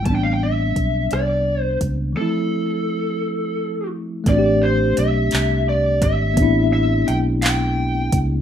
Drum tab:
HH |x-xx-x|------|x-xx-x|x-xx-x|
CP |------|------|---x--|---x--|
SD |---r--|------|------|------|
BD |o-o--o|------|o----o|o----o|